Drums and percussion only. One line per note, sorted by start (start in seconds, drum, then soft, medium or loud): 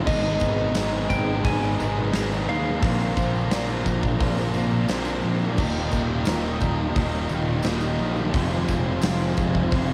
0.07 kick loud
0.07 tambourine soft
0.07 crash loud
0.24 tambourine soft
0.40 kick medium
0.40 tambourine medium
0.75 snare loud
0.75 open hi-hat medium
0.75 tambourine loud
1.10 kick medium
1.10 tambourine medium
1.45 kick loud
1.45 open hi-hat medium
1.45 tambourine soft
1.80 tambourine medium
2.13 snare loud
2.13 open hi-hat medium
2.13 tambourine medium
2.32 tambourine medium
2.50 tambourine soft
2.82 kick loud
2.82 open hi-hat medium
2.82 tambourine soft
3.00 tambourine soft
3.17 kick medium
3.17 tambourine medium
3.35 tambourine soft
3.51 snare loud
3.51 open hi-hat medium
3.51 tambourine loud
3.70 tambourine soft
3.86 kick medium
3.86 tambourine medium
4.03 kick medium
4.03 tambourine soft
4.21 kick loud
4.21 open hi-hat medium
4.38 tambourine soft
4.54 tambourine medium
4.71 tambourine soft
4.89 snare medium
4.89 open hi-hat medium
4.89 tambourine loud
5.05 tambourine medium
5.22 tambourine soft
5.39 tambourine soft
5.57 kick loud
5.57 tambourine soft
5.57 crash loud
5.75 tambourine soft
5.91 kick medium
5.91 tambourine medium
6.25 snare loud
6.25 open hi-hat medium
6.25 tambourine loud
6.60 kick medium
6.60 tambourine medium
6.95 kick loud
6.95 open hi-hat medium
6.95 tambourine soft
7.29 tambourine medium
7.63 snare loud
7.63 open hi-hat medium
7.63 tambourine loud
7.80 tambourine medium
7.99 tambourine soft
8.16 tambourine soft
8.34 kick loud
8.34 open hi-hat medium
8.34 tambourine soft
8.68 kick medium
8.68 tambourine medium
9.02 snare loud
9.02 open hi-hat medium
9.02 tambourine loud
9.37 kick medium
9.37 tambourine medium
9.55 kick medium
9.71 kick loud
9.71 open hi-hat medium
9.71 tambourine soft